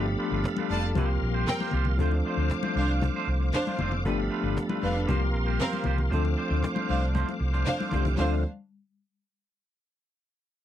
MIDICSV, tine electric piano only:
0, 0, Header, 1, 2, 480
1, 0, Start_track
1, 0, Key_signature, -1, "minor"
1, 0, Tempo, 516351
1, 1852, Time_signature, 4, 2, 24, 8
1, 9896, End_track
2, 0, Start_track
2, 0, Title_t, "Tine electric piano"
2, 0, Program_c, 0, 4
2, 0, Note_on_c, 0, 53, 78
2, 0, Note_on_c, 0, 57, 70
2, 0, Note_on_c, 0, 59, 70
2, 0, Note_on_c, 0, 62, 71
2, 12, Note_on_c, 0, 67, 87
2, 110, Control_c, 0, 64, 127
2, 868, Note_off_c, 0, 53, 0
2, 873, Note_off_c, 0, 57, 0
2, 879, Note_off_c, 0, 59, 0
2, 879, Note_on_c, 0, 53, 72
2, 884, Note_off_c, 0, 62, 0
2, 890, Note_on_c, 0, 55, 71
2, 897, Note_on_c, 0, 58, 62
2, 901, Note_off_c, 0, 67, 0
2, 902, Note_on_c, 0, 60, 59
2, 907, Control_c, 0, 64, 0
2, 912, Note_on_c, 0, 67, 77
2, 1069, Control_c, 0, 64, 127
2, 1826, Note_off_c, 0, 53, 0
2, 1831, Note_off_c, 0, 55, 0
2, 1834, Note_off_c, 0, 60, 0
2, 1835, Note_off_c, 0, 58, 0
2, 1836, Note_on_c, 0, 53, 77
2, 1840, Note_on_c, 0, 57, 66
2, 1842, Note_off_c, 0, 67, 0
2, 1846, Note_on_c, 0, 60, 69
2, 1854, Note_on_c, 0, 62, 73
2, 1862, Note_on_c, 0, 69, 88
2, 1863, Control_c, 0, 64, 0
2, 2004, Control_c, 0, 64, 127
2, 3726, Note_off_c, 0, 53, 0
2, 3728, Note_off_c, 0, 57, 0
2, 3731, Note_off_c, 0, 60, 0
2, 3735, Note_off_c, 0, 62, 0
2, 3739, Note_off_c, 0, 69, 0
2, 3762, Note_on_c, 0, 53, 70
2, 3770, Note_on_c, 0, 57, 81
2, 3777, Note_on_c, 0, 59, 73
2, 3782, Control_c, 0, 64, 0
2, 3786, Note_on_c, 0, 62, 81
2, 3792, Note_on_c, 0, 67, 86
2, 3954, Control_c, 0, 64, 127
2, 4708, Note_off_c, 0, 53, 0
2, 4712, Note_off_c, 0, 57, 0
2, 4716, Note_off_c, 0, 59, 0
2, 4720, Note_off_c, 0, 62, 0
2, 4722, Note_on_c, 0, 53, 69
2, 4723, Note_off_c, 0, 67, 0
2, 4729, Note_on_c, 0, 55, 61
2, 4731, Note_on_c, 0, 58, 66
2, 4740, Note_on_c, 0, 60, 66
2, 4742, Control_c, 0, 64, 0
2, 4747, Note_on_c, 0, 67, 73
2, 4882, Control_c, 0, 64, 127
2, 5668, Note_off_c, 0, 53, 0
2, 5671, Note_off_c, 0, 55, 0
2, 5673, Note_off_c, 0, 58, 0
2, 5678, Note_off_c, 0, 60, 0
2, 5681, Note_off_c, 0, 67, 0
2, 5683, Note_on_c, 0, 53, 78
2, 5693, Note_on_c, 0, 57, 74
2, 5698, Note_on_c, 0, 60, 78
2, 5704, Note_on_c, 0, 62, 63
2, 5706, Control_c, 0, 64, 0
2, 5711, Note_on_c, 0, 69, 85
2, 5895, Control_c, 0, 64, 127
2, 7336, Note_off_c, 0, 53, 0
2, 7341, Note_off_c, 0, 57, 0
2, 7343, Note_off_c, 0, 60, 0
2, 7346, Note_off_c, 0, 62, 0
2, 7350, Note_off_c, 0, 69, 0
2, 7380, Note_on_c, 0, 53, 57
2, 7381, Note_on_c, 0, 57, 53
2, 7386, Note_on_c, 0, 60, 51
2, 7392, Note_on_c, 0, 62, 54
2, 7392, Note_on_c, 0, 67, 65
2, 7609, Note_off_c, 0, 53, 0
2, 7610, Note_off_c, 0, 57, 0
2, 7610, Note_off_c, 0, 62, 0
2, 7614, Note_off_c, 0, 60, 0
2, 7620, Note_on_c, 0, 53, 82
2, 7621, Note_on_c, 0, 57, 72
2, 7621, Note_on_c, 0, 62, 74
2, 7623, Note_off_c, 0, 67, 0
2, 7625, Control_c, 0, 64, 0
2, 7625, Note_on_c, 0, 60, 75
2, 7625, Note_on_c, 0, 69, 86
2, 7841, Note_off_c, 0, 53, 0
2, 7841, Note_off_c, 0, 57, 0
2, 7841, Note_off_c, 0, 62, 0
2, 7844, Note_off_c, 0, 60, 0
2, 7844, Note_off_c, 0, 69, 0
2, 9896, End_track
0, 0, End_of_file